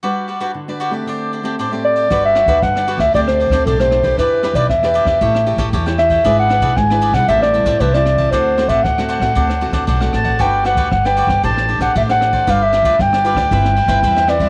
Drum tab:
RD |----------------|x-xxx-xxx-xxx-xx|x-xxx-xxx-xxx-xx|x-xxx-xxx-xxx-xx|
SD |----------------|r-r-rr-r-r-r-rr-|r-r-rr-r-r-r-rr-|r-r-rr-r-r-r-rr-|
BD |----------------|o--oo--oo--oo--o|o--oo--oo--oo--o|o--oo--oo--oo--o|

RD |x-xxx-xxx-xxx-xx|x-xxx-xxx-xxx-xx|x-xxx-xxx-xxx-xx|
SD |r-r-rr-r-r-r-rr-|r-r-rr-r-r-r-rr-|r-r-rr-r-r-r-rr-|
BD |o--oo--oo--oo--o|o--oo--oo--oo--o|o--oo--oo--oo--o|